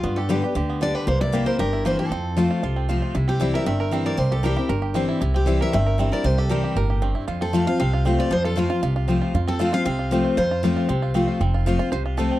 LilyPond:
<<
  \new Staff \with { instrumentName = "Steel-string acoustic guitar" } { \time 4/4 \key f \major \tempo 4 = 232 f'8 a'8 b'4 r4 d''8 b'8 | c''8 d''4 c''8 bes'4 c''8 a'8~ | a'2. r4 | r8 g'4 e''8 e''4 r8 d''8 |
c''8 a'8 g'4 r2 | r8 g'4 e''8 e''4 r8 d''8 | c''8 a'8 g'4 r2 | r8 a'4 f''8 f''4 r8 d''8 |
c''8 a'8 f'4 r2 | r8 a'4 f''8 f''2 | c''2. r4 | r1 | }
  \new Staff \with { instrumentName = "Five-string banjo" } { \time 4/4 \key f \major << { r1 | r1 | r1 | r1 |
r1 | r1 | r1 | r1 |
r1 | r1 | r1 | r4. f'8 c''4 a'4 | } \\ { b8 g'8 g'8 g'8 g'8 b8 d'8 g'8 | bes8 e'8 g'8 bes'8 g'8 e'8 bes8 g'8 | c'4 f'8 f'8 f'8 c'8 f'8 f'8 | e'8 c'8 e'8 bes'8 c'8 bes'8 c'8 bes'8 |
g8 g'8 bes'8 g'8 bes'8 g'8 c'8 e'8 | e'8 c'8 e'8 bes'8 c'8 bes'8 c'8 bes'8 | g8 g'8 bes'8 g'8 bes'8 g'8 c'8 e'8 | f'8 c'8 f'8 f'8 c'8 f'8 c'8 f'8 |
f8 f'8 f'8 f'8 f'8 f'8 c'8 f'8 | f'8 c'8 f'8 f'8 c'8 f'8 c'8 f'8 | f'8 f'8 f'8 f'8 c'8 f'8 c'8 f'8 | c'8 f'8 f'4. f'4 c'8 | } >> }
  \new Staff \with { instrumentName = "Steel-string acoustic guitar" } { \time 4/4 \key f \major << { r4 <d g b g'>8 <b g'>8 r4 <d g b g'>4 | r4 <e bes c' e'>4 r4 <e bes c' e'>4 | r4 <f a c' f'>4 r4 <f a c' f'>4 | r4 <e g c' e'>4 r4 <e g c' e'>4 |
r4 <e g c' e'>8 <c' e'>8 r4 <e g c' e'>4 | r4 <e g c' e'>4 r4 <e g c' e'>8 <c' e'>8 | r4 <e g c' e'>4 r2 | r4 <f a c' f'>8 <c' f'>8 r4 <f a c' f'>4 |
r4 <f a c' f'>8 <c' f'>8 r4 <f a c' f'>4 | r4 <f a c' f'>8 <c' f'>8 r4 <f a c' f'>4 | r4 <f a c' f'>4 r4 <f a c' f'>4 | r4 <f a c' f'>8 <c' f'>8 r4 <f a c' f'>4 | } \\ { g,2 d2 | c2 g,2 | f,2 c2 | c2 g,2 |
c2 g,2 | c2 g,2 | c2 a,4 g,4 | f,2 c2 |
f,2 c2 | f,2 c2 | f,2 c2 | f,2 c2 | } >> }
  \new Staff \with { instrumentName = "Upright bass" } { \clef bass \time 4/4 \key f \major g,2 d,2 | c,2 g,,2 | f,2 c,2 | c,2 g,,2 |
c,2 g,,2 | c,2 g,,2 | c,2 g,,2 | f,2 c,2 |
f,2 c,2 | f,2 c,2 | f,2 c,2 | f,,2 c,2 | }
>>